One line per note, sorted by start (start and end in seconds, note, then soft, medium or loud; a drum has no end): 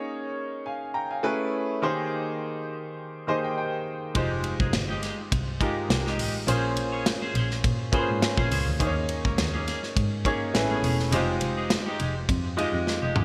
0.00 0.24 A#3 medium
0.00 0.24 C#4 medium
0.00 0.24 D#4 medium
0.00 0.25 G#4 medium
0.00 0.25 C#5 loud
0.66 0.94 F5 medium
0.66 0.94 G#5 medium
0.94 1.10 G5 medium
0.94 1.10 A#5 medium
1.11 1.39 F5 medium
1.11 1.38 G#5 medium
1.23 1.71 A3 loud
1.23 1.71 C#4 medium
1.23 1.71 E4 medium
1.23 1.72 G#4 medium
1.23 1.72 B4 loud
1.82 2.57 D#3 medium
1.82 2.57 A#3 medium
1.82 2.58 D#4 medium
1.82 2.58 G4 medium
1.82 2.58 G#4 medium
1.82 2.58 C5 loud
3.27 3.83 D#3 medium
3.27 3.84 A#3 medium
3.27 3.84 D#4 medium
3.27 3.84 G4 medium
3.27 3.84 G#4 medium
3.27 3.84 C5 loud
3.27 3.43 D#5 medium
3.45 3.56 G5 medium
3.58 4.12 G5 medium
4.15 4.51 F1 loud
4.15 4.90 G#3 medium
4.15 4.36 G#3 medium
4.15 4.90 D#4 medium
4.15 4.31 D#4 medium
4.15 4.91 F4 medium
4.15 4.91 G4 medium
4.15 4.30 G4 loud
4.15 4.91 C5 loud
4.15 kick loud
4.15 ride medium
4.31 muted clean electric guitar stroke soft
4.44 muted clean electric guitar stroke soft
4.44 ride medium
4.60 4.71 F1 loud
4.60 4.73 G#3 medium
4.60 4.73 D#4 medium
4.60 4.75 G#4 medium
4.60 kick medium
4.73 4.97 G1 loud
4.73 muted clean electric guitar stroke soft
4.73 snare loud
4.73 ride medium
4.89 5.01 G#3 medium
4.89 5.02 D#4 medium
4.89 5.03 G4 medium
5.02 5.20 G#3 medium
5.02 5.19 D#4 medium
5.02 5.18 G4 medium
5.02 snare soft
5.02 ride medium
5.19 muted clean electric guitar stroke soft
5.32 5.55 C2 loud
5.32 muted clean electric guitar stroke soft
5.32 kick loud
5.32 ride medium
5.48 muted clean electric guitar stroke medium
5.60 6.16 G#3 medium
5.60 5.82 G#3 medium
5.60 6.16 D#4 medium
5.60 5.77 D#4 medium
5.60 6.17 F4 medium
5.60 6.17 G4 medium
5.60 5.76 G4 medium
5.60 6.17 A#4 medium
5.60 kick medium
5.60 ride medium
5.77 muted clean electric guitar stroke soft
5.89 6.13 C2 loud
5.89 muted clean electric guitar stroke soft
5.89 snare loud
5.89 ride medium
6.07 6.19 G#3 medium
6.07 6.20 D#4 medium
6.07 6.20 G4 medium
6.07 snare soft
6.18 6.42 A1 medium
6.18 6.36 G#3 medium
6.18 6.36 D#4 medium
6.18 6.35 G4 medium
6.18 open hi-hat medium
6.18 ride soft
6.36 muted clean electric guitar stroke soft
6.47 6.71 A#1 loud
6.47 7.22 A#3 medium
6.47 7.22 C#4 medium
6.47 6.69 C#4 medium
6.47 7.23 F4 medium
6.47 7.23 G#4 medium
6.47 6.64 G#4 medium
6.47 7.23 C5 loud
6.47 6.63 C5 medium
6.47 hi-hat pedal medium
6.47 ride medium
6.64 muted clean electric guitar stroke soft
6.76 7.00 A#1 loud
6.76 muted clean electric guitar stroke soft
6.76 ride medium
6.92 7.05 C#4 medium
6.92 7.06 G#4 medium
6.92 7.07 C#5 medium
7.06 muted clean electric guitar stroke soft
7.06 snare loud
7.06 ride medium
7.22 7.34 C#4 medium
7.22 7.35 G#4 medium
7.22 7.35 C5 medium
7.34 7.64 A#1 loud
7.34 7.52 C#4 medium
7.34 7.51 G#4 medium
7.34 7.49 C5 medium
7.34 ride medium
7.50 muted clean electric guitar stroke medium
7.50 snare soft
7.64 7.88 A#2 loud
7.64 kick loud
7.64 ride medium
7.79 muted clean electric guitar stroke medium
7.92 8.48 A#3 medium
7.92 8.48 C#4 medium
7.92 8.14 C#4 medium
7.92 8.49 F4 medium
7.92 8.49 G#4 medium
7.92 8.09 G#4 medium
7.92 8.00 B4 medium
7.92 8.08 C5 medium
7.92 kick medium
7.92 ride medium
7.99 8.52 C5 medium
8.09 8.20 G#2 loud
8.09 muted clean electric guitar stroke soft
8.22 muted clean electric guitar stroke soft
8.22 snare loud
8.22 ride medium
8.37 8.48 A#1 loud
8.37 8.50 C#4 medium
8.37 8.51 G#4 medium
8.37 8.51 C5 medium
8.37 kick loud
8.51 8.64 C#2 medium
8.51 8.68 C#4 medium
8.51 8.67 G#4 medium
8.51 8.65 C5 medium
8.51 open hi-hat medium
8.51 ride medium
8.67 8.78 D2 medium
8.67 muted clean electric guitar stroke soft
8.80 9.16 D#2 loud
8.80 9.55 A#3 loud
8.80 9.01 A#3 medium
8.80 9.55 C#4 medium
8.80 8.96 C#4 loud
8.80 9.55 D#4 medium
8.80 9.55 G#4 medium
8.80 8.95 G#4 medium
8.80 8.87 C5 medium
8.80 kick loud
8.80 hi-hat pedal medium
8.80 ride medium
8.87 9.59 C#5 loud
8.96 muted clean electric guitar stroke medium
9.09 muted clean electric guitar stroke soft
9.09 ride medium
9.25 9.36 C#2 loud
9.25 9.37 A#3 medium
9.25 9.37 C#4 medium
9.25 9.38 A#4 medium
9.25 kick loud
9.38 9.61 D#2 loud
9.38 muted clean electric guitar stroke soft
9.38 snare loud
9.38 ride medium
9.54 9.66 A#3 medium
9.54 9.66 C#4 medium
9.54 9.67 G#4 medium
9.67 9.84 A#3 medium
9.67 9.83 C#4 medium
9.67 9.82 G#4 medium
9.67 snare soft
9.67 ride medium
9.83 muted clean electric guitar stroke soft
9.83 snare soft
9.96 10.20 G#2 loud
9.96 kick loud
9.96 ride medium
10.12 muted clean electric guitar stroke soft
10.25 10.54 A#3 medium
10.25 10.46 A#3 medium
10.25 10.52 C#4 medium
10.25 10.41 C#4 medium
10.25 10.55 D#4 medium
10.25 10.53 G#4 medium
10.25 10.40 G#4 medium
10.25 10.55 C#5 loud
10.25 kick medium
10.25 ride medium
10.41 muted clean electric guitar stroke soft
10.54 10.78 A1 medium
10.54 11.02 A3 medium
10.54 11.02 C#4 medium
10.54 11.02 E4 medium
10.54 11.02 G#4 medium
10.54 11.02 B4 medium
10.54 muted clean electric guitar stroke soft
10.54 snare loud
10.54 ride medium
10.70 10.82 B3 medium
10.70 10.83 C#4 medium
10.70 10.84 G#4 medium
10.83 11.07 E1 loud
10.83 11.01 B3 medium
10.83 10.99 C#4 medium
10.83 10.97 G#4 medium
10.83 open hi-hat medium
10.83 ride soft
10.99 muted clean electric guitar stroke soft
10.99 snare soft
11.11 11.36 F1 loud
11.11 11.33 G#3 loud
11.11 11.87 G#3 medium
11.11 11.87 D#4 medium
11.11 11.27 D#4 loud
11.11 11.88 F4 medium
11.11 11.26 G4 loud
11.11 11.88 G4 medium
11.11 11.88 C5 medium
11.11 hi-hat pedal medium
11.11 ride medium
11.27 muted clean electric guitar stroke soft
11.41 11.65 F1 loud
11.41 muted clean electric guitar stroke soft
11.41 ride medium
11.57 11.70 G#3 medium
11.57 11.70 D#4 medium
11.57 11.71 G#4 medium
11.70 muted clean electric guitar stroke soft
11.70 snare loud
11.70 ride medium
11.86 11.98 G#3 medium
11.86 11.99 D#4 medium
11.86 12.00 G4 medium
11.99 12.23 F1 medium
11.99 12.17 G#3 medium
11.99 12.15 D#4 medium
11.99 12.14 G4 medium
11.99 ride medium
12.16 muted clean electric guitar stroke soft
12.29 12.52 F2 loud
12.29 kick loud
12.29 ride medium
12.45 muted clean electric guitar stroke medium
12.57 13.13 G#3 medium
12.57 12.79 G#3 medium
12.57 13.13 D#4 medium
12.57 12.73 D#4 medium
12.57 13.13 F4 medium
12.57 13.13 G4 medium
12.57 12.72 G4 medium
12.57 13.13 D#5 medium
12.57 ride medium
12.73 12.84 F2 medium
12.73 muted clean electric guitar stroke medium
12.87 muted clean electric guitar stroke soft
12.87 snare medium
13.02 13.13 F1 medium
13.02 13.14 G#3 medium
13.02 13.14 D#4 medium
13.02 13.15 G4 medium
13.15 13.25 D#2 medium
13.15 13.25 G#3 medium
13.15 13.25 D#4 medium
13.15 13.25 G4 medium
13.15 mid tom medium